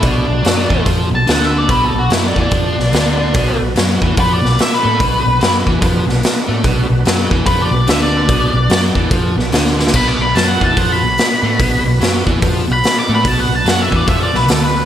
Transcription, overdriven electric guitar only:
X:1
M:4/4
L:1/8
Q:"Swing" 1/4=145
K:Bm
V:1 name="Overdriven electric guitar" clef=bass
B,, B,, F, E, ^E, B,, D,2 | B,, B,, F, E, ^E, B,, D,2 | B,, B,, F, E, ^E, B,, z A, | B,, B,, F, E, ^E, B,, z A, |
B,, B,, F, E, ^E, B,, D,2 | B,, B,, F, E, ^E, B,, D,2 | B,, B,, F, E, ^E, B,, z A, | B,, B,, F, E, ^E, B,, z A, |
B,, B,, F, E, ^E, B,, D,2 |]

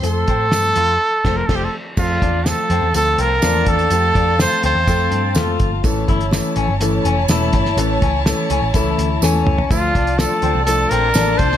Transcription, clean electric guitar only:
X:1
M:4/4
L:1/8
Q:1/4=124
K:F
V:1 name="Clean electric guitar"
z C z F z4 | z D z C z C D2 | z D z C C2 F2 | z E z ^C z C E2 |
z ^C z C E2 C2 | z D z C z C D2 |]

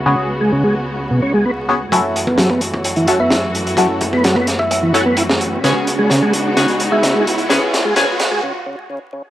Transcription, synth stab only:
X:1
M:4/4
L:1/8
Q:1/4=129
K:F#m
V:1 name="Synth stab"
[B,CFG]4- [B,CFG] z2 [B,CFG] | [CEFA]4- [CEFA] [CEFA] z2 | [CEFA]4- [CEFA] [CEFA] z2 | [B,CFG]4 [B,CFG]4 |
[B,CFG]2 [B,CFG]2 z4 |]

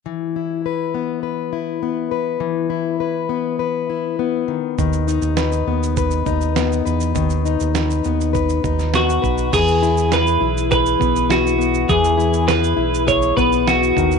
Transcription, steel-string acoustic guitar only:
X:1
M:4/4
L:1/8
Q:1/4=101
K:E
V:1 name="Steel-string acoustic guitar"
E, E B B, B E B, B | E, E B B, B E B, D, | D, D B B, B D B, B | D, D B B, B D B, B |
E, E G E G B, E B, | E, E G E G B, E D, |]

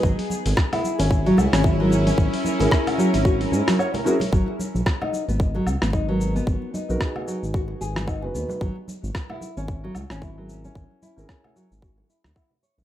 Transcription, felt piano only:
X:1
M:4/4
L:1/16
Q:"Swing 16ths" 1/4=112
K:G#m
V:1 name="Felt piano"
z12 z [CEGA]3- | [CEGA]3 [CEGA] [CE]8- [CE] z [CEGA] z | z12 z [B,DFA]3- | [B,DFA]3 [B,DFA] [B,DG]8- [B,DG] [B,DFB]3 |
z12 z [CEGA]3- | [CEGA]3 [CEGA] [CE]8- [CE] z3 |]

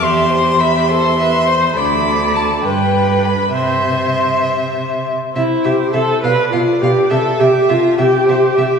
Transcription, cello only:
X:1
M:6/8
L:1/8
Q:3/8=68
K:C
V:1 name="Cello" clef=bass
E,,6 | D,,3 G,,3 | C,4- C, z | C, C, C, B,, B,, B,, |
C, C, C, C, C, C, |]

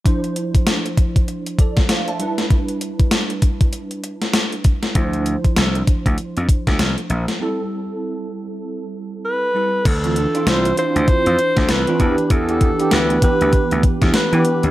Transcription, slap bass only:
X:1
M:4/4
L:1/16
Q:"Swing 16ths" 1/4=98
K:Ddor
V:1 name="Slap bass" clef=bass
z16 | z16 | D,,3 z C,,2 z D,, z F,, z D,, C,, z _B,,, z | z16 |
D,,3 z C,,2 z D,, z F,, z D,, C,, z E,, z | E,,3 z D,,2 z D,, z D,, z E,, z E, z _E,, |]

